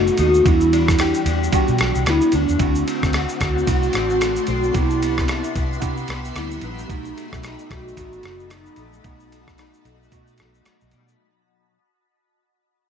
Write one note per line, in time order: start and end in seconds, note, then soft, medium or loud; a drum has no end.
0.00 0.46 B2 medium
0.00 0.47 A3 medium
0.00 0.52 A3 medium
0.00 0.45 B3 medium
0.00 0.18 D#4 medium
0.00 0.47 D#4 medium
0.00 0.16 F#4 loud
0.00 0.47 F#4 medium
0.00 0.52 F#4 medium
0.07 shaker medium
0.17 0.40 D#2 loud
0.17 0.52 D#4 medium
0.17 0.49 F#4 loud
0.17 ride soft
0.17 shaker soft
0.34 shaker medium
0.44 1.12 E2 loud
0.44 2.60 E3 medium
0.44 1.25 G3 medium
0.44 1.25 B3 medium
0.44 1.26 D4 medium
0.44 1.54 E4 loud
0.44 1.26 F#4 medium
0.44 kick loud
0.44 ride medium
0.44 shaker medium
0.61 shaker soft
0.73 1.26 D4 medium
0.73 ride soft
0.73 shaker medium
0.88 kick medium
0.88 cross-stick medium
0.88 shaker medium
0.99 1.51 G4 medium
0.99 cross-stick loud
0.99 ride medium
0.99 shaker medium
1.14 shaker medium
1.26 1.47 E2 medium
1.26 1.79 D4 medium
1.26 ride soft
1.26 shaker medium
1.43 shaker soft
1.52 2.32 G3 medium
1.52 2.32 B3 medium
1.52 2.33 D4 medium
1.52 2.33 F#4 loud
1.52 2.66 G4 medium
1.52 kick medium
1.52 ride medium
1.52 shaker medium
1.68 1.77 B2 loud
1.68 shaker soft
1.78 1.92 B1 loud
1.78 2.33 D4 medium
1.78 cross-stick loud
1.78 ride soft
1.78 shaker medium
1.95 2.04 C2 medium
1.95 shaker soft
2.06 2.19 D2 loud
2.06 2.67 B3 medium
2.06 2.36 E4 loud
2.06 cross-stick medium
2.06 ride medium
2.06 shaker medium
2.21 shaker medium
2.32 2.46 D2 medium
2.32 2.87 D4 medium
2.32 3.14 D4 loud
2.32 ride soft
2.32 shaker medium
2.49 2.58 E2 medium
2.49 shaker medium
2.58 2.81 D2 loud
2.58 4.75 D3 medium
2.58 3.39 A3 medium
2.58 3.40 C4 medium
2.58 3.40 E4 medium
2.58 4.73 F#4 medium
2.58 3.40 F#4 medium
2.58 4.72 D5 medium
2.58 4.73 A5 medium
2.58 6.85 C6 medium
2.58 kick loud
2.58 ride medium
2.58 shaker medium
2.75 shaker soft
2.87 3.40 C4 medium
2.87 ride soft
2.87 shaker medium
3.03 3.24 D2 loud
3.03 kick loud
3.03 cross-stick medium
3.03 shaker medium
3.13 3.67 F#4 medium
3.13 cross-stick loud
3.13 ride medium
3.13 shaker medium
3.29 shaker medium
3.41 3.62 D2 loud
3.41 3.95 C4 medium
3.41 4.45 F#4 loud
3.41 kick loud
3.41 cross-stick loud
3.41 ride soft
3.41 shaker medium
3.58 shaker soft
3.66 3.89 C2 loud
3.66 4.46 A3 medium
3.66 4.47 C4 medium
3.66 4.47 E4 medium
3.66 4.48 F#4 medium
3.66 4.81 F#4 medium
3.66 kick medium
3.66 ride medium
3.66 shaker medium
3.83 shaker soft
3.93 4.37 A1 medium
3.93 4.48 C4 medium
3.93 cross-stick loud
3.93 ride soft
3.93 shaker medium
4.10 shaker medium
4.21 4.81 A3 medium
4.21 cross-stick medium
4.21 ride medium
4.21 shaker medium
4.36 shaker medium
4.47 4.69 B1 medium
4.47 5.02 C4 medium
4.47 4.79 F#4 loud
4.47 ride soft
4.47 shaker medium
4.63 shaker medium
4.73 5.41 C2 loud
4.73 6.89 C3 medium
4.73 5.54 B3 medium
4.73 5.54 D4 medium
4.73 5.55 E4 medium
4.73 6.87 G4 medium
4.73 5.55 G4 medium
4.73 6.87 E5 medium
4.73 6.87 B5 medium
4.73 kick loud
4.73 ride medium
4.73 shaker medium
4.77 5.83 E4 loud
4.90 shaker soft
5.02 5.55 B3 medium
5.02 ride medium
5.02 shaker medium
5.18 kick loud
5.18 cross-stick medium
5.18 shaker medium
5.28 5.82 E4 medium
5.28 cross-stick loud
5.28 ride medium
5.28 shaker medium
5.44 shaker medium
5.55 5.77 C2 loud
5.55 6.09 B3 medium
5.55 kick loud
5.55 ride soft
5.55 shaker medium
5.73 shaker medium
5.80 6.04 C3 loud
5.80 6.61 B3 medium
5.80 6.61 D4 medium
5.80 6.62 E4 medium
5.80 6.62 G4 loud
5.80 kick medium
5.80 ride medium
5.80 shaker medium
5.97 shaker medium
6.08 6.30 C2 medium
6.08 6.63 B3 medium
6.08 cross-stick loud
6.08 ride soft
6.08 shaker medium
6.25 shaker medium
6.35 6.57 D2 medium
6.35 6.96 G3 medium
6.35 6.66 E4 loud
6.35 cross-stick medium
6.35 ride medium
6.35 shaker medium
6.51 shaker medium
6.61 6.84 A#1 loud
6.61 7.16 B3 medium
6.61 7.70 D#4 loud
6.61 ride soft
6.61 shaker soft
6.78 shaker medium
6.88 7.11 B1 loud
6.88 9.04 B2 medium
6.88 7.69 A3 medium
6.88 7.69 B3 medium
6.88 7.69 D#4 medium
6.88 11.16 F#4 medium
6.88 7.70 F#4 loud
6.88 11.16 D#5 medium
6.88 11.16 A5 medium
6.88 11.16 B5 medium
6.88 kick loud
6.88 ride medium
6.88 shaker medium
7.05 shaker soft
7.17 7.70 A3 medium
7.17 ride soft
7.17 shaker medium
7.33 7.54 B1 loud
7.33 kick medium
7.33 cross-stick medium
7.33 shaker medium
7.43 7.97 D#4 medium
7.43 cross-stick loud
7.43 ride medium
7.43 shaker medium
7.59 shaker medium
7.70 7.92 B1 loud
7.70 8.24 A3 medium
7.70 7.95 F#4 loud
7.70 kick loud
7.70 cross-stick medium
7.70 ride soft
7.70 shaker medium
7.88 shaker soft
7.95 8.19 A1 loud
7.95 8.76 A3 medium
7.95 8.76 B3 medium
7.95 8.77 D#4 medium
7.95 9.58 D#4 medium
7.95 8.77 F#4 medium
7.95 kick medium
7.95 ride medium
7.95 shaker medium
8.13 shaker medium
8.23 8.67 F#1 medium
8.23 8.77 A3 medium
8.23 cross-stick loud
8.23 ride medium
8.23 shaker medium
8.40 shaker soft
8.50 10.66 F#3 medium
8.50 9.04 D#4 loud
8.50 cross-stick medium
8.50 ride medium
8.50 shaker medium
8.66 shaker medium
8.76 8.99 A#1 medium
8.76 9.31 A3 medium
8.76 ride soft
8.76 shaker medium
8.93 shaker medium
9.04 9.71 B1 loud
9.04 11.76 B2 medium
9.04 9.84 A3 medium
9.04 9.84 B3 medium
9.04 9.85 D#4 medium
9.04 10.62 D#4 loud
9.04 9.85 F#4 medium
9.04 kick loud
9.04 ride medium
9.04 shaker medium
9.20 shaker soft
9.32 9.85 A3 medium
9.32 ride medium
9.32 shaker medium
9.48 kick medium
9.48 cross-stick loud
9.48 shaker medium
9.58 10.11 D#4 medium
9.58 cross-stick loud
9.58 ride medium
9.58 shaker medium
9.74 shaker medium
9.85 10.07 B1 loud
9.85 10.39 A3 medium
9.85 ride soft
9.85 shaker medium
10.03 shaker medium
10.10 10.41 B2 loud
10.10 10.91 A3 medium
10.10 10.92 B3 medium
10.10 11.76 D#4 medium
10.10 10.92 D#4 medium
10.10 10.93 F#4 loud
10.10 kick medium
10.10 ride medium
10.10 shaker medium
10.27 shaker medium
10.38 10.61 B1 medium
10.38 10.92 A3 medium
10.38 cross-stick medium
10.38 ride medium
10.38 shaker medium
10.54 shaker soft
10.65 11.76 F#3 medium
10.65 cross-stick medium
10.65 ride medium
10.65 shaker medium
10.81 10.91 B1 medium
10.81 shaker medium
10.91 11.14 B2 loud
10.91 11.09 G3 medium
10.91 ride soft
10.91 shaker medium
11.08 11.26 A3 medium
11.08 shaker medium